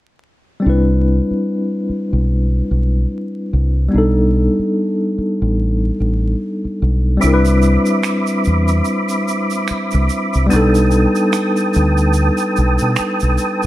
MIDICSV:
0, 0, Header, 1, 6, 480
1, 0, Start_track
1, 0, Key_signature, 0, "major"
1, 0, Tempo, 821918
1, 373, Time_signature, 4, 2, 24, 8
1, 7980, End_track
2, 0, Start_track
2, 0, Title_t, "Tonewheel organ"
2, 0, Program_c, 0, 16
2, 4208, Note_on_c, 0, 60, 62
2, 4209, Note_on_c, 0, 83, 59
2, 4211, Note_on_c, 0, 76, 60
2, 4212, Note_on_c, 0, 86, 71
2, 6111, Note_off_c, 0, 60, 0
2, 6112, Note_off_c, 0, 83, 0
2, 6113, Note_off_c, 0, 76, 0
2, 6113, Note_off_c, 0, 86, 0
2, 6131, Note_on_c, 0, 79, 63
2, 6132, Note_on_c, 0, 71, 61
2, 6132, Note_on_c, 0, 87, 74
2, 6134, Note_on_c, 0, 81, 60
2, 7980, Note_off_c, 0, 71, 0
2, 7980, Note_off_c, 0, 79, 0
2, 7980, Note_off_c, 0, 81, 0
2, 7980, Note_off_c, 0, 87, 0
2, 7980, End_track
3, 0, Start_track
3, 0, Title_t, "Tine electric piano"
3, 0, Program_c, 1, 4
3, 350, Note_on_c, 1, 55, 61
3, 363, Note_on_c, 1, 60, 56
3, 377, Note_on_c, 1, 62, 51
3, 392, Note_on_c, 1, 64, 56
3, 406, Note_on_c, 1, 71, 64
3, 502, Control_c, 1, 64, 127
3, 2258, Note_off_c, 1, 55, 0
3, 2265, Note_off_c, 1, 60, 0
3, 2269, Note_on_c, 1, 55, 63
3, 2272, Note_off_c, 1, 62, 0
3, 2279, Note_off_c, 1, 64, 0
3, 2282, Note_on_c, 1, 59, 57
3, 2286, Note_off_c, 1, 71, 0
3, 2297, Note_on_c, 1, 62, 58
3, 2299, Control_c, 1, 64, 0
3, 2310, Note_on_c, 1, 63, 57
3, 2325, Note_on_c, 1, 69, 68
3, 2389, Control_c, 1, 64, 127
3, 4177, Note_off_c, 1, 55, 0
3, 4184, Note_off_c, 1, 59, 0
3, 4188, Note_on_c, 1, 55, 69
3, 4192, Note_off_c, 1, 62, 0
3, 4198, Note_off_c, 1, 63, 0
3, 4203, Note_on_c, 1, 60, 61
3, 4205, Note_off_c, 1, 69, 0
3, 4217, Note_on_c, 1, 62, 62
3, 4220, Control_c, 1, 64, 0
3, 4231, Note_on_c, 1, 64, 61
3, 4245, Note_on_c, 1, 70, 61
3, 4272, Note_off_c, 1, 70, 0
3, 4284, Note_on_c, 1, 71, 78
3, 4335, Control_c, 1, 64, 127
3, 6097, Note_off_c, 1, 55, 0
3, 6104, Note_off_c, 1, 60, 0
3, 6111, Note_on_c, 1, 55, 71
3, 6112, Note_off_c, 1, 62, 0
3, 6119, Note_off_c, 1, 64, 0
3, 6126, Note_on_c, 1, 59, 65
3, 6138, Note_on_c, 1, 62, 64
3, 6140, Control_c, 1, 64, 0
3, 6145, Note_off_c, 1, 71, 0
3, 6154, Note_on_c, 1, 63, 63
3, 6168, Note_on_c, 1, 69, 79
3, 6231, Control_c, 1, 64, 127
3, 7980, Note_off_c, 1, 55, 0
3, 7980, Note_off_c, 1, 59, 0
3, 7980, Note_off_c, 1, 62, 0
3, 7980, Note_off_c, 1, 63, 0
3, 7980, Note_off_c, 1, 69, 0
3, 7980, End_track
4, 0, Start_track
4, 0, Title_t, "Fingered electric bass"
4, 0, Program_c, 2, 33
4, 386, Note_on_c, 2, 36, 74
4, 693, Note_off_c, 2, 36, 0
4, 1243, Note_on_c, 2, 35, 78
4, 1522, Note_off_c, 2, 35, 0
4, 1583, Note_on_c, 2, 35, 74
4, 1778, Note_off_c, 2, 35, 0
4, 2063, Note_on_c, 2, 36, 75
4, 2257, Note_off_c, 2, 36, 0
4, 2302, Note_on_c, 2, 35, 84
4, 2611, Note_off_c, 2, 35, 0
4, 3164, Note_on_c, 2, 33, 75
4, 3442, Note_off_c, 2, 33, 0
4, 3506, Note_on_c, 2, 33, 70
4, 3699, Note_off_c, 2, 33, 0
4, 3984, Note_on_c, 2, 35, 79
4, 4178, Note_off_c, 2, 35, 0
4, 4225, Note_on_c, 2, 36, 99
4, 4532, Note_off_c, 2, 36, 0
4, 4947, Note_on_c, 2, 40, 83
4, 5140, Note_off_c, 2, 40, 0
4, 5806, Note_on_c, 2, 36, 86
4, 5885, Note_off_c, 2, 36, 0
4, 6046, Note_on_c, 2, 36, 81
4, 6124, Note_off_c, 2, 36, 0
4, 6148, Note_on_c, 2, 35, 96
4, 6454, Note_off_c, 2, 35, 0
4, 6869, Note_on_c, 2, 38, 87
4, 7175, Note_off_c, 2, 38, 0
4, 7348, Note_on_c, 2, 35, 95
4, 7455, Note_off_c, 2, 35, 0
4, 7486, Note_on_c, 2, 47, 98
4, 7564, Note_off_c, 2, 47, 0
4, 7724, Note_on_c, 2, 35, 82
4, 7803, Note_off_c, 2, 35, 0
4, 7980, End_track
5, 0, Start_track
5, 0, Title_t, "Muted fingered electric bass strokes"
5, 764, Note_on_c, 9, 29, 38
5, 822, Note_off_c, 9, 29, 0
5, 1106, Note_on_c, 9, 29, 39
5, 1164, Note_off_c, 9, 29, 0
5, 2682, Note_on_c, 9, 29, 41
5, 2741, Note_off_c, 9, 29, 0
5, 3026, Note_on_c, 9, 29, 43
5, 3085, Note_off_c, 9, 29, 0
5, 3882, Note_on_c, 9, 29, 39
5, 3940, Note_off_c, 9, 29, 0
5, 5668, Note_on_c, 9, 29, 44
5, 5726, Note_off_c, 9, 29, 0
5, 7587, Note_on_c, 9, 29, 46
5, 7645, Note_off_c, 9, 29, 0
5, 7980, End_track
6, 0, Start_track
6, 0, Title_t, "Drums"
6, 4216, Note_on_c, 9, 82, 65
6, 4274, Note_off_c, 9, 82, 0
6, 4351, Note_on_c, 9, 82, 51
6, 4410, Note_off_c, 9, 82, 0
6, 4451, Note_on_c, 9, 82, 44
6, 4510, Note_off_c, 9, 82, 0
6, 4589, Note_on_c, 9, 82, 41
6, 4648, Note_off_c, 9, 82, 0
6, 4692, Note_on_c, 9, 26, 62
6, 4692, Note_on_c, 9, 82, 64
6, 4751, Note_off_c, 9, 26, 0
6, 4751, Note_off_c, 9, 82, 0
6, 4828, Note_on_c, 9, 82, 44
6, 4886, Note_off_c, 9, 82, 0
6, 4931, Note_on_c, 9, 82, 48
6, 4990, Note_off_c, 9, 82, 0
6, 5069, Note_on_c, 9, 82, 37
6, 5127, Note_off_c, 9, 82, 0
6, 5167, Note_on_c, 9, 82, 56
6, 5225, Note_off_c, 9, 82, 0
6, 5308, Note_on_c, 9, 82, 49
6, 5366, Note_off_c, 9, 82, 0
6, 5420, Note_on_c, 9, 82, 47
6, 5478, Note_off_c, 9, 82, 0
6, 5551, Note_on_c, 9, 82, 44
6, 5609, Note_off_c, 9, 82, 0
6, 5651, Note_on_c, 9, 26, 57
6, 5651, Note_on_c, 9, 82, 53
6, 5710, Note_off_c, 9, 26, 0
6, 5710, Note_off_c, 9, 82, 0
6, 5788, Note_on_c, 9, 82, 44
6, 5847, Note_off_c, 9, 82, 0
6, 5895, Note_on_c, 9, 82, 49
6, 5953, Note_off_c, 9, 82, 0
6, 6037, Note_on_c, 9, 82, 37
6, 6095, Note_off_c, 9, 82, 0
6, 6137, Note_on_c, 9, 82, 64
6, 6196, Note_off_c, 9, 82, 0
6, 6276, Note_on_c, 9, 82, 50
6, 6335, Note_off_c, 9, 82, 0
6, 6372, Note_on_c, 9, 82, 45
6, 6430, Note_off_c, 9, 82, 0
6, 6514, Note_on_c, 9, 82, 40
6, 6572, Note_off_c, 9, 82, 0
6, 6616, Note_on_c, 9, 26, 66
6, 6616, Note_on_c, 9, 82, 61
6, 6675, Note_off_c, 9, 26, 0
6, 6675, Note_off_c, 9, 82, 0
6, 6755, Note_on_c, 9, 82, 44
6, 6813, Note_off_c, 9, 82, 0
6, 6855, Note_on_c, 9, 82, 45
6, 6913, Note_off_c, 9, 82, 0
6, 6993, Note_on_c, 9, 82, 38
6, 7052, Note_off_c, 9, 82, 0
6, 7086, Note_on_c, 9, 82, 57
6, 7144, Note_off_c, 9, 82, 0
6, 7228, Note_on_c, 9, 82, 51
6, 7286, Note_off_c, 9, 82, 0
6, 7338, Note_on_c, 9, 82, 49
6, 7396, Note_off_c, 9, 82, 0
6, 7466, Note_on_c, 9, 82, 49
6, 7525, Note_off_c, 9, 82, 0
6, 7570, Note_on_c, 9, 26, 55
6, 7570, Note_on_c, 9, 82, 56
6, 7629, Note_off_c, 9, 26, 0
6, 7629, Note_off_c, 9, 82, 0
6, 7709, Note_on_c, 9, 82, 46
6, 7768, Note_off_c, 9, 82, 0
6, 7814, Note_on_c, 9, 82, 51
6, 7872, Note_off_c, 9, 82, 0
6, 7957, Note_on_c, 9, 82, 37
6, 7980, Note_off_c, 9, 82, 0
6, 7980, End_track
0, 0, End_of_file